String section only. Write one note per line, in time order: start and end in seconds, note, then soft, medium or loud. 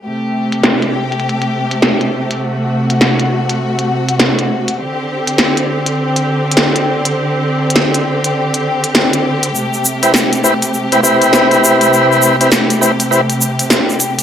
0.04 4.75 C3 medium
0.04 4.75 A3 medium
0.04 2.39 G4 medium
2.42 4.77 F#4 medium
4.78 9.50 D3 medium
4.78 9.50 C4 medium
4.78 14.23 G4 medium
9.54 14.23 C3 medium
9.54 14.23 A3 medium